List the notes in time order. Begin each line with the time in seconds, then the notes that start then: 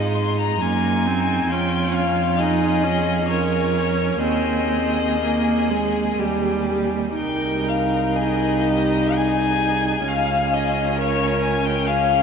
Already playing: G#2 G#3 D#4 D#5
0.15 C6
0.39 A#5
0.60 F#2 A#3 D#4 G#5
1.07 C4
1.49 F2 C#4 F4 G5
1.94 F5
2.38 D#4 G#4 D#5
2.84 C#4
3.30 C#4 A#4 C#5
4.23 D#2 C4 G#4 D#5
5.20 A#3
5.70 G#3
6.19 D#2 G3 G4
7.18 C2 D#4 A#4 G5
7.68 F5
8.16 G#4 D#5
8.66 G4
9.16 G#4 G#5
10.08 C#2 C#4 G#4 F5
10.53 D#5
10.97 A#4 C#5
11.42 G#5
11.65 G5
11.86 G#4 F5